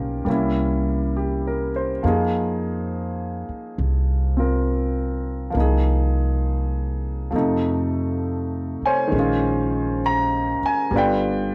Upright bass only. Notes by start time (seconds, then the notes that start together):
Already playing: B1
0.26 C2
2.04 F2
3.49 muted upright bass stroke
3.78 C2
5.55 C2
7.32 F2
8.82 muted upright bass stroke
9.12 A#1
10.62 muted upright bass stroke
10.91 G1